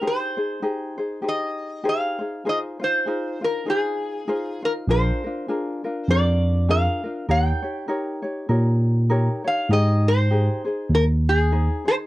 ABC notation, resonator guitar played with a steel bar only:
X:1
M:4/4
L:1/8
Q:"Swing" 1/4=99
K:Ab
V:1 name="Resonator guitar played with a steel bar"
c4 e2 f2 | e c2 B A3 B | c4 =d2 f2 | g6- g f |
e c3 B A2 c |]